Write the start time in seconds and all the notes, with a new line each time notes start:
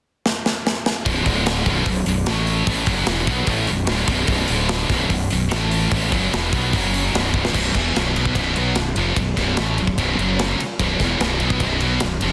0.26 snare
0.46 snare
0.67 snare
0.86 snare
1.06 B0 B1 F#2 B2, kick, open hi-hat
1.26 D1 D2 A2 D3, kick, open hi-hat
1.46 snare, open hi-hat
1.66 B0 B1 F#2 B2, kick, open hi-hat
1.86 B0 B1 F#2, kick, open hi-hat
2.06 B0 B1 F#2, open hi-hat
2.26 A1 A2 E3 A3, snare, open hi-hat
2.47 open hi-hat
2.67 A1 A2 E3 A3, kick, open hi-hat
2.86 F#1 F#2 C#3 F#3, kick, open hi-hat
3.06 E1 E2 B2 E3, snare, open hi-hat
3.27 B1 B2 F#3 B3, kick, open hi-hat
3.47 A1 A2 E3 A3, kick, open hi-hat
3.67 B0 B1 F#2, open hi-hat
3.87 D1 D2 A2 D3, snare, open hi-hat
4.08 B0 B1 F#2 B2, kick, snare, open hi-hat
4.27 B0 B1 F#2 B2, kick, open hi-hat
4.48 D1 D2 A2 D3, open hi-hat
4.69 snare, open hi-hat
4.89 B0 B1 F#2 B2, kick, snare, open hi-hat
5.09 B0 B1 F#2, kick, open hi-hat
5.30 B0 B1 F#2, open hi-hat
5.49 A1 A2 E3 A3, snare, open hi-hat
5.53 A2
5.71 open hi-hat
5.90 A1 A2 E3 A3, kick, open hi-hat
6.10 F#1 F#2 C#3 F#3, kick, open hi-hat
6.33 E1 E2 B2 E3, snare, open hi-hat
6.52 B1 B2 F#3 B3, kick, open hi-hat
6.73 F#1 F#2 C#3 F#3, kick, open hi-hat
6.94 open hi-hat
7.12 B0 B1 F#2 B2, snare, open hi-hat
7.34 kick
7.45 snare
7.53 B0 B1 F#2 B2, kick, crash
7.73 E1 E2 B2 E3, kick, ride
7.94 B0 B1 F#2 B2, snare, ride
8.13 B1 B2 F#3 B3, ride
8.25 kick
8.34 B0 B1 F#2 B2, kick, ride
8.54 B1 B2 F#3 B3, ride
8.75 B0 B1 F#2, snare, ride
8.96 F1 F2 C3 F3, ride
9.16 B0 B1 F#2, kick, ride
9.36 B0 B1 F#2 B2, kick, snare, ride
9.57 A1 A2 E3 A3, snare, ride
9.78 B0 B1 F#2, ride
9.87 kick
9.98 B0 B1 F#2 B2, kick, ride
10.18 F#1 F#2 C#3 F#3, ride
10.39 snare, ride
10.59 muted fingered electric bass stroke, muted distorted electric guitar stroke, ride
10.79 B0 B1 F#2 B2, kick, ride
11.00 E1 E2 B2 E3, kick, snare, ride
11.20 B0 B1 F#2 B2, snare, ride
11.40 B1 B2 F#3 B3, ride
11.50 kick
11.60 B0 B1 F#2 B2, kick, ride
11.80 B1 B2 F#3 B3, ride
12.00 B0 B1 F#2, snare, ride
12.21 F1 F2 C3 F3, ride